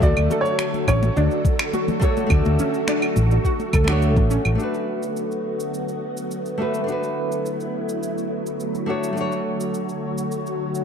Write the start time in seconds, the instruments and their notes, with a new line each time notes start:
Already playing: string machine D3 F#3 A3 F#4 A4, nylon-string guitar A3
0.00 fretless electric bass D2, nylon-string guitar D4 F#4, synth arpeggio sound F#4, grand piano D5, kick, muted conga, cabasa
0.06 nylon-string guitar A4
0.17 fretless electric bass D2, cabasa, claves
0.30 synth arpeggio sound A4, muted conga, low conga, cabasa
0.41 grand piano C#5
0.45 cabasa
0.59 finger snap, cabasa
0.74 muted conga, cabasa
0.87 fretless electric bass A1, synth arpeggio sound C#4, grand piano C#5, kick, cabasa, claves
1.03 muted conga, cabasa
1.16 fretless electric bass D2, synth arpeggio sound D4, grand piano D5, cabasa
1.31 cabasa
1.45 kick, muted conga, low conga, cabasa
1.59 finger snap, cabasa, claves
1.73 synth arpeggio sound F#4, muted conga, cabasa
1.88 high conga, low conga, cabasa
2.00 nylon-string guitar A3 D4 F#4 C#5, synth arpeggio sound A4, kick, cabasa
2.17 muted conga, cabasa
2.26 fretless electric bass D2, nylon-string guitar A3 D4, kick, cabasa, claves
2.32 nylon-string guitar F#4 D5
2.45 fretless electric bass D2, muted conga, cabasa
2.59 synth arpeggio sound C#4, low conga, cabasa
2.74 cabasa
2.87 synth arpeggio sound D4, finger snap, muted conga, cabasa
3.02 cabasa, claves
3.16 fretless electric bass A1, muted conga, cabasa
3.31 cabasa
3.45 synth arpeggio sound F#4, kick, cabasa
3.60 muted conga, cabasa
3.73 fretless electric bass D2, synth arpeggio sound A4, kick, low conga, cabasa, claves
3.84 nylon-string guitar A3 D4, finger snap
3.88 nylon-string guitar F#4 C#5, muted conga, cabasa
4.02 cabasa
4.16 fretless electric bass A1, kick, high conga, low conga, cabasa
4.30 synth arpeggio sound C#4, muted conga, cabasa
4.45 fretless electric bass A1, cabasa, claves
4.55 string machine D3 F#3 A3 B3 F#4, nylon-string guitar A3 D4
4.59 nylon-string guitar F#4 B4, cabasa
4.74 cabasa
5.03 cabasa
5.16 cabasa
5.31 cabasa
5.60 cabasa
5.74 cabasa
5.88 cabasa
6.17 cabasa
6.31 cabasa
6.46 cabasa
6.58 nylon-string guitar A3 D4 F#4
6.62 nylon-string guitar B4
6.74 cabasa
6.84 nylon-string guitar A3 D4
6.88 string machine E4, nylon-string guitar F#4 B4, cabasa
7.03 cabasa
7.32 cabasa
7.46 cabasa
7.60 cabasa
7.89 cabasa
8.03 cabasa
8.18 cabasa
8.46 cabasa
8.60 cabasa
8.75 cabasa
8.86 nylon-string guitar A3 D4 F#4 C#5, string machine F#4 C#5
9.03 cabasa
9.13 nylon-string guitar A3 D4
9.17 nylon-string guitar F#4 C#5, cabasa
9.32 cabasa
9.60 cabasa
9.74 cabasa
9.89 cabasa
10.18 cabasa
10.32 cabasa
10.46 cabasa
10.75 cabasa